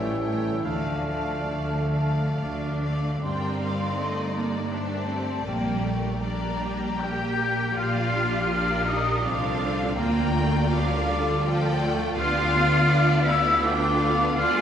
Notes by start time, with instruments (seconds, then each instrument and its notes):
Already playing: double bass section A1, cello section A2, harp A2 A3 G4 C#5, french horn section E3, bassoon G3, trombone section G3 C#4, viola section A3, clarinet E4, violin section C#5 G5, oboe E5, flute section G5
0.23 bassoon A3, viola section A3, violin section C#5 G5
0.47 harp D3
0.52 harp A3
0.57 harp F4
0.61 double bass section D2, harp D5, oboe F5
0.65 cello section D3, french horn section D3, trombone section F3 D4, bassoon A3, viola section A3, clarinet D4, violin section D5 F5, flute section A5
1.08 viola section A3, violin section D5 F5
1.49 double bass section D2, cello section D3
1.94 viola section A3, violin section D5 F5
2.39 double bass section D2, cello section D3 D4, flute section D6
2.82 viola section A3, violin section D5 F5
3.22 double bass section G2, harp G2, viola section G3 D4, cello section C4, violin section A#4 D5 G5, flute section C6
3.41 harp D3
3.60 harp A#3, viola section D#4, violin section F5
3.79 harp D4
3.97 viola section A3, violin section A4 D#5, harp D5
4.16 harp A#4
4.35 viola section A#3, cello section A#3, violin section D5, flute section A#5
4.53 harp D6
4.72 cello section A3, viola section D4, violin section G4 C5 D5, harp D5, flute section A5
4.91 harp A#4
5.08 viola section C4, harp D5
5.28 harp D4
5.46 double bass section A#1, harp A#2, cello section G3, viola section A#3, violin section G4 A#4, flute section G5
5.66 harp G3
5.84 viola section A3, harp A#3
6.03 harp D4
6.21 viola section G3 D4, cello section A#3, violin section G4 D5, harp D5, flute section A#5
6.41 harp A#4
6.62 viola section G3, harp D5, violin section G5
6.83 harp D6
7.01 viola section A#3 G4, cello section G4, violin section A#4, harp D5, flute section G6
7.22 harp A#4
7.40 viola section G4, harp D5
7.58 harp D4
7.76 double bass section A#1, harp A#2, viola section A#3, cello section F4, violin section F4 D5 F5, flute section F6
7.95 harp F3
8.13 harp A#3, viola section D4
8.31 harp F4
8.50 violin section A#4 D5, harp D5
8.69 harp A#4
8.87 cello section D#4, violin section D#5, harp F5, flute section D#6
9.06 harp D6
9.23 double bass section C2, viola section C4 F4, cello section D4, violin section A4 F5, harp F5, flute section D6
9.43 harp A#4
9.60 harp D5
9.79 harp F4
9.96 double bass section D2, harp D3, cello section A#3, viola section A#3 F4, violin section A#4 D5 G5, flute section A#5
10.16 harp D4
10.35 viola section A3, harp A#3
10.53 harp F4
10.70 viola section G3, cello section D4, violin section A#4 F5, harp D5, flute section D6
10.91 harp A#4
11.08 violin section A4, harp F5
11.43 viola section F3, violin section D5 G5, harp F5
11.63 harp A#4
11.81 viola section A3, harp D5
11.99 harp F4
12.15 double bass section D2, harp D3, viola section B3 D4, cello section F4, violin section G4 D5 F5, flute section F6
12.35 harp D4
12.53 harp B3, violin section F4
12.71 harp F4
12.88 viola section B3 D4, harp B4, violin section D5
13.08 harp F4
13.24 cello section E4, viola section E4, violin section F5, harp F5, flute section E6
13.63 cello section D4, viola section F4, violin section A4 B4 G5, harp F5, flute section D6
13.81 harp B4
14.00 harp F4, violin section F5
14.18 harp B3
14.36 double bass section D2, harp D3, viola section D4, cello section F4, violin section G#4 B4 D5, flute section F6
14.54 harp G#3